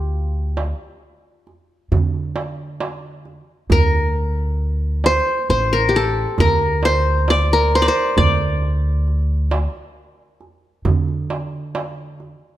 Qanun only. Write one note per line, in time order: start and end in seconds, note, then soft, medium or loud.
0.00 0.29 F4 medium
0.00 0.99 G4 medium
3.72 5.09 A#4 medium
5.06 5.50 C5 medium
5.50 6.56 C5 medium
5.73 6.02 A#4 medium
5.89 7.14 G4 medium
5.96 6.46 A4 medium
6.40 7.53 A#4 medium
6.85 7.75 C5 medium
7.30 7.82 D5 medium
7.53 8.66 A#4 medium
7.75 7.88 C5 medium
7.82 8.17 D5 medium
7.88 8.94 C5 medium
8.18 11.71 D5 medium